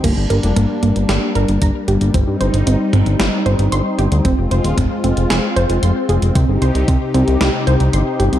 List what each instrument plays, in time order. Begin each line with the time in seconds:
0.04 analog synth bass G1, analog synth pad G3 A#3 D4, synth arpeggio sound A#3, kick, closed hi-hat, crash
0.17 analog synth bass G1
0.30 analog synth bass G1, synth arpeggio sound A#4, closed hi-hat
0.43 analog synth bass F1, closed hi-hat
0.56 analog synth bass G1, synth arpeggio sound A#3, closed hi-hat, mid tom
0.83 analog synth bass G1, synth arpeggio sound A#3, closed hi-hat
0.96 analog synth bass G1, closed hi-hat
1.09 analog synth bass G1, synth arpeggio sound G4, snare, closed hi-hat
1.35 analog synth bass G1, synth arpeggio sound A#4, closed hi-hat
1.48 analog synth bass G1, closed hi-hat
1.62 analog synth bass G1, synth arpeggio sound A#5, kick, closed hi-hat
1.88 analog synth bass G1, synth arpeggio sound G4, closed hi-hat
2.01 analog synth bass G1, closed hi-hat
2.14 analog synth bass G1, analog synth pad C4 D#4, synth arpeggio sound C4, kick, closed hi-hat
2.27 analog synth bass G2
2.41 analog synth bass G1, synth arpeggio sound C5, closed hi-hat
2.54 analog synth bass G1, closed hi-hat
2.67 analog synth bass G1, synth arpeggio sound C4, closed hi-hat
2.93 analog synth bass G1, synth arpeggio sound C4, closed hi-hat, mid tom
3.06 analog synth bass G1, closed hi-hat
3.20 analog synth bass G1, synth arpeggio sound G4, snare, closed hi-hat
3.46 analog synth bass G1, synth arpeggio sound C5, closed hi-hat
3.59 analog synth bass G1, closed hi-hat
3.72 analog synth bass G1, synth arpeggio sound C6, closed hi-hat
3.98 analog synth bass G1, synth arpeggio sound G4, closed hi-hat
4.12 analog synth bass D2, closed hi-hat
4.25 analog synth bass F1, analog synth pad G#3 F4, synth arpeggio sound C4, kick, closed hi-hat
4.38 analog synth bass F1
4.51 analog synth bass F1, synth arpeggio sound C5, closed hi-hat
4.64 analog synth bass D#1, closed hi-hat
4.78 analog synth bass F1, synth arpeggio sound C4, kick, closed hi-hat, mid tom
5.04 analog synth bass F1, synth arpeggio sound C4, closed hi-hat
5.17 analog synth bass F1, closed hi-hat
5.30 analog synth bass F1, synth arpeggio sound G#4, snare, closed hi-hat
5.56 analog synth bass F1, synth arpeggio sound C5, closed hi-hat
5.70 analog synth bass F1, closed hi-hat
5.83 analog synth bass F1, synth arpeggio sound C6, closed hi-hat
6.09 analog synth bass F1, synth arpeggio sound G#4, closed hi-hat
6.22 analog synth bass F1, closed hi-hat
6.35 analog synth bass C2, analog synth pad C3 D#4 G4, synth arpeggio sound C4, kick, closed hi-hat
6.48 analog synth bass G1
6.62 analog synth bass C2, synth arpeggio sound C5, closed hi-hat
6.75 analog synth bass C2, closed hi-hat
6.88 analog synth bass C2, synth arpeggio sound C4, kick, closed hi-hat
7.14 analog synth bass C2, synth arpeggio sound C4, closed hi-hat
7.28 analog synth bass C2, closed hi-hat
7.41 analog synth bass C2, synth arpeggio sound G4, snare, closed hi-hat
7.67 analog synth bass C2, synth arpeggio sound C5, closed hi-hat
7.80 analog synth bass C2, closed hi-hat
7.93 analog synth bass G1, synth arpeggio sound C6, closed hi-hat
8.20 analog synth bass G1, synth arpeggio sound G4, closed hi-hat
8.33 analog synth bass C2, closed hi-hat